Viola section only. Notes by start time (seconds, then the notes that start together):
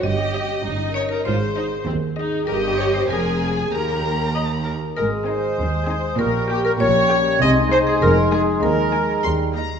0.03 G4
0.64 D#4
1.26 F4
1.57 D#4
1.87 C4
2.18 D#4
2.47 G4
3.10 G#4
3.72 A#4
4.35 D#5
4.66 A#4
5.28 C4 D#4
5.88 C4 D#4
6.50 A#3 G4
7.11 A#3 G4
7.71 G#3 D#4
8.32 G#3 D#4
8.93 G#3 D#4
9.55 A#3 D#4